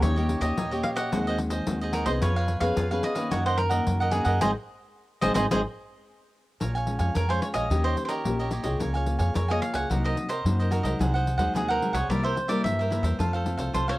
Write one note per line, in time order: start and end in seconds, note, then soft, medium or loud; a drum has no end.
0.00 0.37 D#2 loud
0.00 0.55 D#3 medium
0.00 0.16 A#3 medium
0.00 0.16 C#4 medium
0.00 0.15 D#4 soft
0.00 0.17 G4 medium
0.00 0.16 G4 medium
0.00 0.41 C#5 loud
0.00 0.16 C#5 medium
0.00 pandeiro medium
0.04 0.15 D#5 medium
0.16 0.26 A#3 medium
0.16 0.26 C#4 medium
0.16 0.27 G4 medium
0.16 0.42 G4 medium
0.16 0.40 C#5 medium
0.16 0.40 D#5 medium
0.16 pandeiro soft
0.29 0.55 A#3 medium
0.29 0.55 C#4 medium
0.29 0.56 G4 medium
0.29 pandeiro medium
0.41 0.54 D#2 loud
0.41 0.56 G4 soft
0.41 0.55 C#5 medium
0.41 0.55 D#5 medium
0.41 0.83 D#5 medium
0.41 pandeiro medium
0.57 0.81 D#2 medium
0.57 1.10 A#2 medium
0.57 0.70 D#4 soft
0.57 0.70 G4 soft
0.57 0.71 C#5 medium
0.57 0.70 D#5 medium
0.57 pandeiro medium
0.71 1.08 A#3 medium
0.71 1.08 C#4 medium
0.71 1.09 G4 medium
0.71 0.97 G4 medium
0.71 0.96 C#5 medium
0.71 0.94 D#5 medium
0.71 pandeiro soft
0.83 0.88 F5 medium
0.83 pandeiro medium
0.96 1.11 G4 medium
0.96 1.10 C#5 medium
0.96 1.10 D#5 medium
0.96 1.90 F#5 loud
0.96 pandeiro medium
1.12 1.59 D#2 loud
1.12 1.64 D#3 medium
1.12 1.63 G#3 medium
1.12 1.63 C4 medium
1.12 1.25 F#4 medium
1.12 1.63 F#4 medium
1.12 1.25 G#4 medium
1.12 1.26 C5 medium
1.12 1.26 D#5 medium
1.12 pandeiro medium
1.27 1.38 G#4 medium
1.27 1.38 C5 medium
1.27 1.39 D#5 medium
1.27 pandeiro soft
1.38 muted cavaquinho stroke soft
1.38 pandeiro medium
1.50 1.80 G#4 medium
1.50 1.79 C5 medium
1.50 1.78 D#5 medium
1.50 pandeiro medium
1.67 2.02 D#2 loud
1.67 2.19 D#3 medium
1.67 2.04 G#3 medium
1.67 2.04 C4 medium
1.67 2.04 F#4 medium
1.67 pandeiro medium
1.81 1.92 G#4 medium
1.81 1.93 C5 medium
1.81 1.94 D#5 medium
1.81 pandeiro soft
1.93 2.07 F#4 soft
1.93 2.07 G#4 medium
1.93 2.07 A#4 medium
1.93 2.05 C5 medium
1.93 2.04 D#5 medium
1.93 pandeiro medium
2.06 2.19 C2 loud
2.06 2.30 B3 medium
2.06 2.31 C#4 medium
2.06 2.31 G#4 medium
2.06 2.21 G#4 medium
2.06 2.11 C5 medium
2.06 2.20 C5 medium
2.06 2.20 D#5 medium
2.06 pandeiro medium
2.22 2.57 F2 loud
2.22 2.74 F3 medium
2.22 2.35 F4 medium
2.22 2.35 B4 medium
2.22 2.65 C#5 loud
2.22 2.35 C#5 medium
2.22 2.35 F5 medium
2.22 pandeiro medium
2.36 2.61 B4 medium
2.36 2.61 C#5 medium
2.36 2.59 F5 medium
2.36 pandeiro soft
2.48 pandeiro medium
2.60 2.74 F2 loud
2.60 2.85 B3 medium
2.60 2.85 C#4 medium
2.60 2.85 G#4 medium
2.60 2.76 B4 medium
2.60 2.75 C#5 medium
2.60 2.75 F5 medium
2.60 3.03 F5 medium
2.60 pandeiro medium
2.76 3.00 F2 medium
2.76 3.15 F3 medium
2.76 2.89 F4 soft
2.76 2.90 B4 medium
2.76 2.90 C#5 medium
2.76 2.90 F5 medium
2.76 pandeiro medium
2.91 3.14 B3 medium
2.91 3.14 C#4 medium
2.91 3.14 G#4 medium
2.91 3.16 B4 medium
2.91 3.15 C#5 medium
2.91 3.14 F5 medium
2.91 pandeiro soft
3.03 3.33 D#5 medium
3.03 pandeiro medium
3.15 3.67 D#3 medium
3.15 3.68 A#3 medium
3.15 3.68 C#4 medium
3.15 3.31 B4 medium
3.15 3.30 C#5 medium
3.15 3.29 F5 medium
3.15 pandeiro medium
3.31 3.78 F#2 loud
3.31 3.84 F#2 medium
3.31 3.44 F#4 medium
3.31 3.45 A#4 medium
3.31 3.45 C#5 medium
3.31 3.45 D#5 medium
3.31 3.45 F#5 medium
3.31 pandeiro medium
3.46 3.57 A#4 medium
3.46 3.60 C5 medium
3.46 3.57 D#5 medium
3.46 3.57 F#5 medium
3.46 pandeiro soft
3.57 4.10 A#4 medium
3.57 muted cavaquinho stroke soft
3.57 pandeiro medium
3.69 4.09 D#3 medium
3.69 4.09 A#3 medium
3.69 4.09 C#4 medium
3.69 3.99 A#4 medium
3.69 3.98 D#5 medium
3.69 3.98 F#5 medium
3.69 pandeiro medium
3.86 4.22 F#2 loud
3.86 4.39 C#3 medium
3.86 pandeiro medium
4.00 4.12 A#4 medium
4.00 4.13 D#5 medium
4.00 4.13 F#5 medium
4.00 pandeiro soft
4.11 4.37 D#3 soft
4.11 4.37 A#3 medium
4.11 4.37 C#4 medium
4.11 4.26 F#4 medium
4.11 4.40 G#4 medium
4.11 4.26 A#4 medium
4.11 4.25 D#5 medium
4.11 4.23 F#5 medium
4.11 pandeiro medium
4.24 4.38 F#2 medium
4.24 4.40 A#4 medium
4.24 4.40 D#5 medium
4.24 4.39 F#5 medium
4.24 pandeiro medium
4.41 4.52 G#1 medium
4.41 4.50 D#3 medium
4.41 4.50 G#3 medium
4.41 4.50 C4 medium
4.41 4.50 G#4 loud
4.41 4.50 C5 loud
4.41 4.50 D#5 medium
4.41 pandeiro loud
5.21 5.34 G#1 medium
5.21 5.32 D#3 loud
5.21 5.32 G#3 loud
5.21 5.32 C4 medium
5.21 5.32 G#4 medium
5.21 5.32 C5 medium
5.21 5.32 D#5 medium
5.21 pandeiro medium
5.34 5.46 G#1 medium
5.34 5.45 D#3 medium
5.34 5.45 G#3 medium
5.34 5.45 C4 medium
5.34 5.45 G#4 medium
5.34 5.45 C5 medium
5.34 5.45 C5 loud
5.34 5.45 D#5 medium
5.34 pandeiro loud
5.50 5.61 G#1 medium
5.50 5.60 D#3 medium
5.50 5.60 G#3 loud
5.50 5.60 C4 loud
5.50 5.60 G#4 loud
5.50 5.60 C5 medium
5.50 5.60 D#5 medium
5.50 pandeiro loud
6.60 6.96 A#1 medium
6.60 7.13 A#2 soft
6.60 6.73 A#4 soft
6.60 6.74 C#5 soft
6.60 6.74 F5 medium
6.60 6.74 G#5 medium
6.60 pandeiro medium
6.75 6.99 C#5 medium
6.75 6.99 F5 medium
6.75 6.98 G#5 medium
6.75 pandeiro soft
6.87 7.24 F3 medium
6.87 7.25 G#3 medium
6.87 7.25 C#4 medium
6.87 pandeiro medium
6.99 7.12 F2 medium
6.99 7.14 C#5 medium
6.99 7.14 F5 medium
6.99 7.13 G#5 medium
6.99 pandeiro medium
7.15 7.68 F2 medium
7.15 7.39 F2 medium
7.15 7.28 A#4 soft
7.15 7.30 A#4 medium
7.15 7.28 C#5 soft
7.15 7.29 F5 medium
7.15 7.28 G#5 medium
7.15 pandeiro medium
7.29 7.66 F3 medium
7.29 7.67 G#3 medium
7.29 7.67 C#4 medium
7.29 7.42 C5 medium
7.29 7.55 C#5 medium
7.29 7.54 F5 medium
7.29 7.52 G#5 medium
7.29 pandeiro soft
7.42 7.47 C#5 medium
7.42 pandeiro medium
7.54 7.67 A#1 medium
7.54 7.69 C#5 medium
7.54 7.84 D#5 loud
7.54 7.69 F5 medium
7.54 7.68 G#5 medium
7.54 pandeiro medium
7.70 7.94 D#2 medium
7.70 8.23 D#3 medium
7.70 8.21 A#3 medium
7.70 8.21 C#4 medium
7.70 7.83 D#4 soft
7.70 7.83 G4 medium
7.70 8.21 G4 medium
7.70 7.84 C#5 medium
7.70 7.83 D#5 medium
7.70 pandeiro medium
7.84 7.96 G4 medium
7.84 8.04 C5 medium
7.84 7.96 C#5 medium
7.84 7.97 D#5 medium
7.84 pandeiro soft
7.97 muted cavaquinho stroke soft
7.97 pandeiro medium
8.05 8.48 A#4 medium
8.05 8.12 C5 medium
8.05 8.37 D#5 medium
8.05 pandeiro medium
8.10 8.38 G4 medium
8.10 8.37 C#5 medium
8.25 8.60 A#1 medium
8.25 8.78 A#2 medium
8.25 8.51 A#3 medium
8.25 8.51 C#4 medium
8.25 8.52 G4 medium
8.25 pandeiro medium
8.39 8.51 G4 medium
8.39 8.51 C#5 medium
8.39 8.52 D#5 medium
8.39 pandeiro soft
8.50 8.64 D#4 soft
8.50 8.64 G4 medium
8.50 8.63 C#5 medium
8.50 8.62 D#5 medium
8.50 pandeiro medium
8.63 8.77 C2 medium
8.63 9.02 A#3 medium
8.63 9.03 F4 medium
8.63 8.79 G4 medium
8.63 9.03 G#4 medium
8.63 8.78 C#5 medium
8.63 8.78 D#5 medium
8.63 pandeiro medium
8.80 9.15 C#2 loud
8.80 9.32 C#3 medium
8.80 8.93 A#4 soft
8.80 8.93 C#5 medium
8.80 8.94 F5 medium
8.80 8.93 G#5 medium
8.80 pandeiro medium
8.94 9.19 C#5 medium
8.94 9.19 F5 medium
8.94 9.17 G#5 medium
8.94 pandeiro soft
9.06 9.44 A#3 medium
9.06 9.44 F4 medium
9.06 9.45 G#4 medium
9.06 pandeiro medium
9.19 9.32 F2 medium
9.19 9.34 C#5 medium
9.19 9.33 F5 medium
9.19 9.33 G#5 medium
9.19 pandeiro medium
9.34 9.59 F2 medium
9.34 9.88 C#3 medium
9.34 9.47 A#4 soft
9.34 9.48 C#5 medium
9.34 9.48 F5 soft
9.34 9.47 G#5 soft
9.34 pandeiro medium
9.48 9.86 A#3 medium
9.48 9.87 F4 medium
9.48 9.87 G#4 medium
9.48 9.75 C#5 medium
9.48 9.61 D#5 medium
9.48 9.74 F5 medium
9.48 9.72 G#5 medium
9.48 pandeiro soft
9.62 9.74 F5 loud
9.62 pandeiro medium
9.73 9.87 C#2 medium
9.73 9.89 C#5 medium
9.73 9.88 F5 medium
9.73 10.04 F#5 medium
9.73 9.88 G#5 medium
9.73 pandeiro medium
9.90 10.13 C2 medium
9.90 10.43 C3 medium
9.90 10.26 F#3 medium
9.90 10.26 A#3 medium
9.90 10.26 D#4 medium
9.90 10.03 F#4 soft
9.90 10.03 A#4 medium
9.90 10.03 C5 medium
9.90 10.03 D#5 medium
9.90 pandeiro medium
10.04 10.16 A#4 medium
10.04 10.16 C5 medium
10.04 10.16 D#5 medium
10.04 10.30 D#5 medium
10.04 pandeiro soft
10.17 muted cavaquinho stroke soft
10.17 pandeiro medium
10.29 10.57 A#4 medium
10.29 10.69 C5 medium
10.29 10.57 C5 medium
10.29 10.56 D#5 medium
10.29 pandeiro medium
10.44 10.80 F#2 medium
10.44 10.97 C3 medium
10.44 10.82 F#3 medium
10.44 10.82 A#3 medium
10.44 10.82 D#4 medium
10.44 pandeiro medium
10.59 10.71 A#4 medium
10.59 10.71 C5 medium
10.59 10.72 D#5 medium
10.59 pandeiro soft
10.71 10.84 F#4 medium
10.71 10.84 A#4 medium
10.71 10.83 C5 soft
10.71 10.82 D#5 medium
10.71 pandeiro medium
10.83 10.96 C2 medium
10.83 11.22 F#3 medium
10.83 11.22 G#3 medium
10.83 11.22 D#4 medium
10.83 10.98 A#4 medium
10.83 10.98 C5 medium
10.83 10.97 D#5 medium
10.83 pandeiro medium
10.99 11.35 C2 medium
10.99 11.52 C3 medium
10.99 11.12 D#4 soft
10.99 11.13 G#4 medium
10.99 11.13 C5 medium
10.99 11.13 F#5 medium
10.99 pandeiro medium
11.14 11.39 G#4 medium
11.14 11.38 C5 medium
11.14 11.36 F#5 medium
11.14 pandeiro soft
11.27 pandeiro medium
11.38 11.51 D#2 medium
11.38 11.76 F#3 medium
11.38 11.77 G#3 medium
11.38 11.77 D#4 medium
11.38 11.53 G#4 medium
11.38 11.53 C5 medium
11.38 11.52 F#5 medium
11.38 pandeiro medium
11.54 11.77 D#2 medium
11.54 12.07 C3 medium
11.54 11.67 D#4 soft
11.54 11.67 G#4 soft
11.54 11.68 G#4 medium
11.54 11.68 C5 medium
11.54 11.67 F#5 medium
11.54 pandeiro medium
11.68 11.94 G#4 medium
11.68 11.95 A#4 medium
11.68 11.93 C5 medium
11.68 11.92 F#5 medium
11.68 pandeiro soft
11.81 11.98 F#3 medium
11.81 11.98 G#3 medium
11.81 11.98 D#4 medium
11.81 pandeiro medium
11.93 12.06 C2 medium
11.93 12.08 G#4 medium
11.93 12.07 C5 medium
11.93 12.09 C#5 medium
11.93 12.07 F#5 medium
11.93 pandeiro medium
12.08 12.32 C2 medium
12.08 12.61 C3 medium
12.08 12.35 G3 medium
12.08 12.35 A#3 medium
12.08 12.22 E4 soft
12.08 12.36 E4 medium
12.08 12.23 A#4 medium
12.08 12.23 C5 medium
12.08 12.22 D5 medium
12.08 12.22 E5 medium
12.08 pandeiro medium
12.23 12.35 A#4 medium
12.23 12.49 C5 medium
12.23 12.36 C5 medium
12.23 12.36 E5 medium
12.23 pandeiro soft
12.36 muted cavaquinho stroke soft
12.36 pandeiro medium
12.48 12.86 G3 medium
12.48 12.86 A#3 medium
12.48 12.87 E4 medium
12.48 12.77 A#4 medium
12.48 12.76 C5 medium
12.48 12.62 D5 loud
12.48 12.76 E5 medium
12.48 pandeiro medium
12.64 12.99 G2 medium
12.64 13.17 G2 medium
12.64 13.02 E5 medium
12.64 pandeiro medium
12.79 12.90 A#4 medium
12.79 12.91 C5 medium
12.79 12.91 E5 medium
12.79 pandeiro soft
12.90 13.14 G3 medium
12.90 13.15 A#3 medium
12.90 13.04 E4 soft
12.90 13.15 E4 medium
12.90 13.04 A#4 medium
12.90 13.03 C5 medium
12.90 13.02 E5 medium
12.90 pandeiro medium
13.03 13.15 E2 medium
13.03 13.18 A#4 medium
13.03 13.17 C5 medium
13.03 13.17 E5 medium
13.03 pandeiro medium
13.19 13.54 F2 loud
13.19 13.71 F3 medium
13.19 13.42 A3 medium
13.19 13.42 C4 medium
13.19 13.32 F4 soft
13.19 13.43 F4 medium
13.19 13.32 A4 medium
13.19 13.32 C5 medium
13.19 13.32 F5 medium
13.19 pandeiro medium
13.33 13.59 A4 medium
13.33 13.58 C5 medium
13.33 13.56 F5 medium
13.33 pandeiro soft
13.45 13.83 A3 medium
13.45 13.83 C4 medium
13.45 13.83 F4 medium
13.45 pandeiro medium
13.57 13.70 C2 medium
13.57 13.73 A4 medium
13.57 13.72 C5 medium
13.57 13.71 F5 medium
13.57 pandeiro medium
13.73 13.97 C2 medium
13.73 13.98 C3 medium
13.73 13.86 F4 soft
13.73 13.87 A4 soft
13.73 13.88 C5 loud
13.73 13.87 C5 medium
13.73 13.87 F5 soft
13.73 pandeiro medium
13.88 13.98 A3 medium
13.88 13.98 C4 medium
13.88 13.98 F4 medium
13.88 13.98 A4 medium
13.88 13.98 C5 medium
13.88 13.94 C#5 loud
13.88 13.98 F5 medium
13.88 pandeiro soft